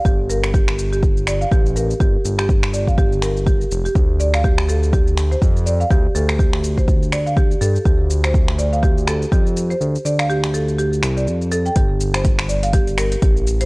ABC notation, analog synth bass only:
X:1
M:4/4
L:1/8
Q:"Swing 16ths" 1/4=123
K:Dphr
V:1 name="Analog synth bass" clef=bass
G,,,6 A,,,2 | G,,, G,,,6 F,,, | D,,6 F,,2 | D,, D,,6 G,, |
D,,6 F,,2 | D,, D,,4 C,, F,,2 | G,,,6 A,,,2 |]